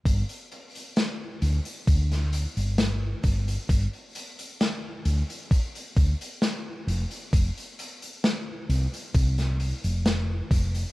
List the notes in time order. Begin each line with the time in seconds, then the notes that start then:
0.05 G1, kick, closed hi-hat
0.29 closed hi-hat
0.52 closed hi-hat
0.75 closed hi-hat
0.96 snare, closed hi-hat
1.42 D2, closed hi-hat
1.65 closed hi-hat
1.87 D2, kick, closed hi-hat
2.12 snare, closed hi-hat
2.33 closed hi-hat
2.57 G1, closed hi-hat
2.78 snare, closed hi-hat
3.23 G1, kick, closed hi-hat
3.48 closed hi-hat
3.69 G1, kick, closed hi-hat
3.93 closed hi-hat
4.15 closed hi-hat
4.39 closed hi-hat
4.61 snare, closed hi-hat
5.05 D2, closed hi-hat
5.30 closed hi-hat
5.51 kick, closed hi-hat
5.75 closed hi-hat
5.96 D2, kick, closed hi-hat
6.21 closed hi-hat
6.42 snare, closed hi-hat
6.87 F1, closed hi-hat
7.11 closed hi-hat
7.33 F1, kick, closed hi-hat
7.57 closed hi-hat
7.79 closed hi-hat
8.02 closed hi-hat
8.24 snare, closed hi-hat
8.69 C2, closed hi-hat
8.94 closed hi-hat
9.14 C2, kick, closed hi-hat
9.38 snare, closed hi-hat
9.60 closed hi-hat
9.84 F1, closed hi-hat
10.06 snare, closed hi-hat
10.51 F1, kick, closed hi-hat
10.75 closed hi-hat